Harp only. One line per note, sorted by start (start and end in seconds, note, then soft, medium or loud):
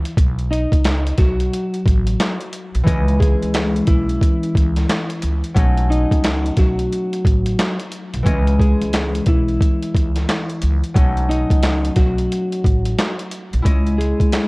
2.83 5.61 E3 medium
2.83 5.61 G#3 medium
2.83 5.57 C#4 medium
2.87 5.53 D#5 medium
5.55 8.31 F#3 medium
5.55 8.30 A3 medium
5.55 8.25 C#4 medium
5.59 8.29 D#4 medium
8.23 11.01 E3 medium
8.23 11.01 G#3 medium
8.23 10.96 C#4 medium
8.27 10.92 D#5 medium
10.94 13.70 F#3 medium
10.94 13.70 A3 medium
10.94 13.65 C#4 medium
10.98 13.68 D#4 medium
13.62 14.48 G#3 medium
13.62 14.48 C#4 medium
13.62 14.48 E4 medium
13.66 14.48 D#5 medium